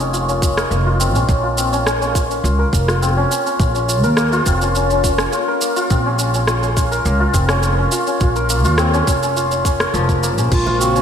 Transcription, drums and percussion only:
0.00 shaker soft
0.14 shaker soft
0.29 shaker soft
0.42 kick loud
0.42 shaker medium
0.57 cross-stick medium
0.57 shaker soft
0.71 shaker soft
1.00 shaker medium
1.15 shaker soft
1.29 kick loud
1.29 shaker soft
1.58 shaker medium
1.73 shaker soft
1.87 cross-stick medium
1.87 shaker soft
2.02 shaker soft
2.15 kick loud
2.15 shaker medium
2.31 shaker soft
2.45 shaker soft
2.73 kick medium
2.73 shaker medium
2.88 cross-stick medium
2.88 shaker soft
3.03 shaker soft
3.32 shaker medium
3.47 shaker soft
3.60 kick loud
3.60 shaker soft
3.75 shaker soft
3.89 shaker medium
4.04 shaker soft
4.17 cross-stick medium
4.17 shaker soft
4.33 shaker soft
4.46 kick medium
4.46 shaker medium
4.62 shaker soft
4.75 shaker soft
4.90 shaker soft
5.04 kick medium
5.04 shaker medium
5.18 cross-stick medium
5.18 shaker soft
5.33 shaker soft
5.61 shaker medium
5.77 shaker soft
5.90 kick loud
5.90 shaker soft
6.19 shaker medium
6.34 shaker soft
6.47 cross-stick medium
6.47 shaker soft
6.63 shaker soft
6.77 kick medium
6.77 shaker medium
6.92 shaker soft
7.06 shaker soft
7.34 kick loud
7.34 shaker medium
7.49 cross-stick medium
7.49 shaker soft
7.63 shaker soft
7.92 shaker medium
8.07 shaker soft
8.21 kick loud
8.21 shaker soft
8.36 shaker soft
8.50 shaker medium
8.65 shaker soft
8.78 cross-stick medium
8.78 shaker soft
8.94 shaker soft
9.07 kick loud
9.07 shaker medium
9.23 shaker soft
9.37 shaker soft
9.51 shaker soft
9.65 kick medium
9.65 shaker medium
9.80 cross-stick medium
9.80 shaker soft
9.94 shaker soft
10.09 kick medium
10.09 shaker soft
10.23 shaker medium
10.38 shaker soft
10.52 kick loud
10.52 crash medium
10.52 shaker soft
10.66 high conga medium
10.66 low conga medium
10.81 shaker medium
10.96 high bongo medium
10.96 shaker soft

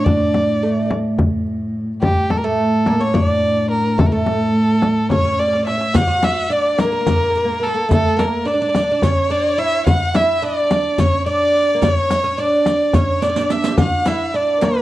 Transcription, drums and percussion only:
0.06 frame drum medium
0.06 darbuka dum medium
0.34 darbuka tek medium
0.34 frame drum medium
0.63 darbuka ka soft
0.91 darbuka tek medium
0.91 frame drum medium
1.18 frame drum medium
1.18 darbuka dum medium
1.47 darbuka ka soft
2.02 frame drum medium
2.02 darbuka dum medium
2.30 darbuka tek medium
2.30 frame drum medium
2.59 darbuka ka soft
2.86 darbuka tek medium
2.86 frame drum medium
3.14 frame drum medium
3.14 darbuka dum medium
3.43 darbuka ka soft
3.99 frame drum medium
3.99 darbuka dum medium
4.26 darbuka tek medium
4.26 frame drum medium
4.82 darbuka tek medium
4.82 frame drum medium
5.10 frame drum medium
5.10 darbuka dum medium
5.40 darbuka tek soft
5.53 darbuka ka medium
5.67 darbuka tek medium
5.81 darbuka ka medium
5.95 riq medium
5.95 darbuka dum medium
5.95 frame drum medium
6.22 riq soft
6.22 darbuka tek medium
6.22 frame drum medium
6.51 riq soft
6.79 riq soft
6.79 darbuka tek medium
6.79 frame drum medium
7.06 riq medium
7.06 frame drum medium
7.06 darbuka dum medium
7.35 riq soft
7.64 riq soft
7.91 riq medium
7.91 darbuka dum medium
7.91 frame drum medium
8.19 riq soft
8.19 darbuka tek medium
8.19 frame drum medium
8.48 riq soft
8.75 riq soft
8.75 darbuka tek medium
8.75 frame drum medium
9.02 riq soft
9.02 frame drum medium
9.02 darbuka dum medium
9.31 riq soft
9.59 riq soft
9.87 riq soft
9.87 frame drum medium
9.87 darbuka dum medium
10.15 riq soft
10.15 darbuka tek medium
10.15 frame drum medium
10.42 riq soft
10.71 riq soft
10.71 darbuka tek medium
10.71 frame drum medium
10.98 riq medium
10.98 darbuka dum medium
10.98 frame drum medium
11.26 riq soft
11.55 riq soft
11.82 riq medium
11.82 darbuka dum medium
11.82 frame drum medium
12.10 riq medium
12.10 darbuka tek medium
12.10 frame drum medium
12.38 riq soft
12.38 darbuka ka soft
12.66 riq soft
12.66 darbuka tek medium
12.66 frame drum medium
12.93 riq medium
12.93 frame drum medium
12.93 darbuka dum medium
13.22 riq medium
13.22 darbuka tek medium
13.36 riq medium
13.36 darbuka ka medium
13.50 riq medium
13.50 darbuka tek medium
13.64 riq medium
13.64 darbuka ka medium
13.78 riq medium
13.78 darbuka dum medium
13.78 frame drum medium
14.05 riq medium
14.05 darbuka tek medium
14.05 frame drum medium
14.34 riq soft
14.61 riq soft
14.61 darbuka tek medium
14.61 frame drum medium

